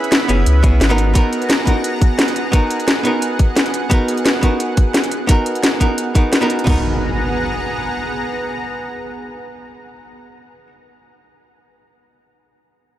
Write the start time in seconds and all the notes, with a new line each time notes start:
Already playing: B3 C#4 E4 G#4 E5 F#5 B5
0.04 closed hi-hat
0.12 snare, closed hi-hat
0.28 F#1 B3 C#4 E4 G#4, closed hi-hat
0.46 C#2, closed hi-hat
0.63 B3 C#4 E4 G#4, kick, closed hi-hat
0.73 B1
0.81 G#1, snare, closed hi-hat
0.89 B3 D#4 F#4 A#4, closed hi-hat
0.98 G#4 F#5 A#5, closed hi-hat
1.14 B3 D#4 F#4 A#4, kick, closed hi-hat
1.33 closed hi-hat
1.42 closed hi-hat
1.50 snare, closed hi-hat
1.65 B3 D#4 F#4 A#4, kick, closed hi-hat
1.84 closed hi-hat
2.02 kick, closed hi-hat
2.19 snare, closed hi-hat
2.28 closed hi-hat
2.36 closed hi-hat
2.52 B3 D#4 F#4 A#4, kick, closed hi-hat
2.71 closed hi-hat
2.80 closed hi-hat
2.88 snare, closed hi-hat
3.03 B3 D#4 F#4 A#4, closed hi-hat
3.22 closed hi-hat
3.39 kick, closed hi-hat
3.56 snare, closed hi-hat
3.66 closed hi-hat
3.74 closed hi-hat
3.90 B3 D#4 F#4 A#4, kick, closed hi-hat
4.08 closed hi-hat
4.17 closed hi-hat
4.26 snare, closed hi-hat
4.41 B3 D#4 F#4 A#4, kick, closed hi-hat
4.60 closed hi-hat
4.77 kick, closed hi-hat
4.94 snare, closed hi-hat
5.04 closed hi-hat
5.11 closed hi-hat
5.27 B3 D#4 F#4 A#4, kick, closed hi-hat
5.46 closed hi-hat
5.55 closed hi-hat
5.63 snare, closed hi-hat
5.80 B3 D#4 F#4 A#4, kick, closed hi-hat
5.98 closed hi-hat
6.15 B3 D#4 F#4 A#4, kick, closed hi-hat
6.33 snare, closed hi-hat
6.41 B3 D#4 F#4 A#4, closed hi-hat
6.50 closed hi-hat
6.59 closed hi-hat
6.64 B3 D#4 F#4 G#4 F#5 A#5, kick, crash, impact
6.69 A#4